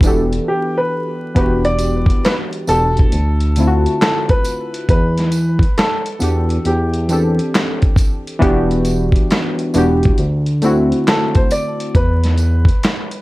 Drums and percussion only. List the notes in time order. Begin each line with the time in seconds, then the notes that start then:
0.01 kick, closed hi-hat, tambourine
0.33 closed hi-hat
1.36 kick, closed hi-hat
1.65 closed hi-hat
1.79 closed hi-hat, tambourine
2.06 kick, closed hi-hat
2.25 snare, clap, closed hi-hat
2.53 closed hi-hat
2.67 closed hi-hat, tambourine
2.97 kick, closed hi-hat
3.12 closed hi-hat
3.40 closed hi-hat
3.56 closed hi-hat, tambourine
3.86 closed hi-hat
4.02 snare, clap, closed hi-hat
4.29 kick, closed hi-hat
4.45 closed hi-hat, tambourine
4.74 closed hi-hat
4.89 kick, closed hi-hat
5.17 snare, closed hi-hat
5.32 closed hi-hat, tambourine
5.59 kick, closed hi-hat
5.78 snare, clap, closed hi-hat
6.06 closed hi-hat
6.20 closed hi-hat, tambourine
6.50 closed hi-hat
6.65 closed hi-hat
6.93 closed hi-hat
7.09 closed hi-hat, tambourine
7.39 closed hi-hat
7.55 snare, clap, closed hi-hat
7.82 kick, closed hi-hat
7.96 kick, closed hi-hat, tambourine
8.27 closed hi-hat
8.42 kick, closed hi-hat
8.71 closed hi-hat
8.85 closed hi-hat, tambourine
9.12 kick, closed hi-hat
9.31 snare, clap, closed hi-hat
9.59 closed hi-hat
9.74 closed hi-hat, tambourine
10.03 kick, closed hi-hat
10.18 closed hi-hat
10.46 closed hi-hat
10.62 closed hi-hat, tambourine
10.92 closed hi-hat
11.08 snare, clap, closed hi-hat
11.35 kick, closed hi-hat
11.51 closed hi-hat, tambourine
11.80 closed hi-hat
11.95 kick, closed hi-hat
12.23 snare, closed hi-hat
12.38 closed hi-hat, tambourine
12.65 kick, closed hi-hat
12.83 snare, clap, closed hi-hat
13.11 closed hi-hat